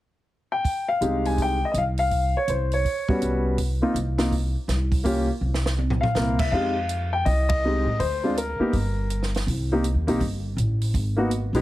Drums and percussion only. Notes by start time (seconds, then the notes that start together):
0.65 kick, open hi-hat
1.02 closed hi-hat
1.25 open hi-hat
1.38 kick, open hi-hat
1.74 closed hi-hat
1.98 open hi-hat
2.11 kick, open hi-hat
2.48 closed hi-hat
2.72 open hi-hat
2.85 kick, open hi-hat
3.09 kick
3.22 closed hi-hat
3.58 kick, open hi-hat
3.96 closed hi-hat
4.18 snare, open hi-hat
4.32 kick, open hi-hat
4.69 snare, closed hi-hat
4.92 kick, open hi-hat
5.05 kick, open hi-hat
5.54 snare
5.66 snare
5.78 high tom
5.90 floor tom
6.03 floor tom
6.15 snare
6.39 kick, crash
6.52 kick
6.89 closed hi-hat
7.26 kick, open hi-hat
7.49 kick, ride
8.00 kick, open hi-hat
8.37 closed hi-hat
8.73 kick, open hi-hat
9.10 closed hi-hat
9.23 snare
9.34 snare, open hi-hat
9.47 kick, open hi-hat
9.84 closed hi-hat
10.08 open hi-hat
10.20 kick, open hi-hat
10.58 closed hi-hat
10.81 open hi-hat
10.94 kick, open hi-hat
11.31 closed hi-hat
11.54 open hi-hat